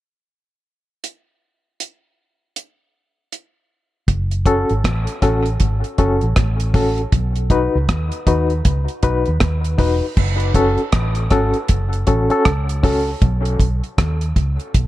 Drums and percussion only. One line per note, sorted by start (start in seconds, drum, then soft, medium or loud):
1.04 closed hi-hat medium
1.80 closed hi-hat medium
2.56 closed hi-hat medium
3.32 closed hi-hat medium
4.08 kick loud
4.08 closed hi-hat medium
4.31 closed hi-hat medium
4.46 kick medium
4.46 closed hi-hat medium
4.69 closed hi-hat soft
4.84 kick loud
4.84 cross-stick loud
4.84 closed hi-hat medium
5.07 closed hi-hat medium
5.22 kick medium
5.22 cross-stick medium
5.22 closed hi-hat medium
5.46 closed hi-hat soft
5.60 kick loud
5.60 closed hi-hat medium
5.84 closed hi-hat soft
5.98 kick medium
5.98 closed hi-hat medium
6.21 closed hi-hat soft
6.36 kick loud
6.36 cross-stick loud
6.36 closed hi-hat medium
6.60 closed hi-hat medium
6.74 kick medium
6.74 open hi-hat medium
6.98 closed hi-hat soft
7.12 kick loud
7.12 closed hi-hat medium
7.36 closed hi-hat soft
7.50 kick medium
7.50 closed hi-hat medium
7.89 kick loud
7.89 cross-stick loud
7.89 closed hi-hat medium
8.12 closed hi-hat medium
8.27 kick medium
8.27 closed hi-hat medium
8.50 closed hi-hat soft
8.65 kick loud
8.65 closed hi-hat loud
8.88 closed hi-hat soft
9.03 kick medium
9.03 closed hi-hat medium
9.26 closed hi-hat soft
9.40 kick loud
9.40 cross-stick loud
9.40 closed hi-hat medium
9.64 closed hi-hat medium
9.79 kick medium
9.79 open hi-hat medium
10.17 kick loud
10.17 crash medium
10.40 closed hi-hat medium
10.54 kick medium
10.54 closed hi-hat medium
10.78 closed hi-hat soft
10.92 kick loud
10.92 cross-stick loud
10.92 closed hi-hat medium
11.15 closed hi-hat medium
11.30 kick medium
11.30 cross-stick medium
11.30 closed hi-hat medium
11.54 closed hi-hat soft
11.68 kick loud
11.68 closed hi-hat loud
11.93 closed hi-hat soft
12.07 kick medium
12.07 closed hi-hat medium
12.30 closed hi-hat soft
12.45 kick loud
12.45 cross-stick loud
12.45 closed hi-hat medium
12.69 closed hi-hat medium
12.84 kick loud
12.84 open hi-hat medium
13.22 kick loud
13.22 closed hi-hat medium
13.45 closed hi-hat soft
13.60 kick medium
13.60 closed hi-hat medium
13.84 closed hi-hat soft
13.98 kick loud
13.98 cross-stick loud
13.98 closed hi-hat medium
14.21 closed hi-hat medium
14.36 kick medium
14.36 closed hi-hat medium
14.60 closed hi-hat soft
14.74 kick loud
14.74 closed hi-hat medium